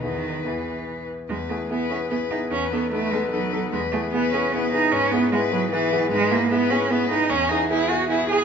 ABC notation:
X:1
M:3/4
L:1/8
Q:1/4=149
K:E
V:1 name="Violin"
B4- B z | B2 B2 B2 | B2 B2 B2 | B2 B2 B2 |
B2 B2 B2 | [K:Elyd] B2 B2 B2 | G2 G2 G2 |]
V:2 name="Grand piano"
[E,,B,EG]2 [E,,B,EG]4 | E,, [B,EG] [B,EG] [B,EG] [B,EG] [B,EG] | E,, [B,DA] [B,DA] [B,DA] [B,DA] [B,DA] | E,, [B,EG] [B,EG] [B,EG] [B,EG] [B,EG] |
G,, [B,EG] [B,EG] [B,EG] [B,EG] [B,EG] | [K:Elyd] G,, [B,EG] [B,EG] [B,EG] [B,EG] [B,EG] | E,, [B,EG] [B,EG] [B,EG] [B,EG] [B,EG] |]
V:3 name="Cello"
D,2 E,3 z | G, A, B, C B, D | C B, A, G, F,2 | G, A, B, C B, D |
C B, G, F, E,2 | [K:Elyd] G, A, B, C B, D | C D E F E G |]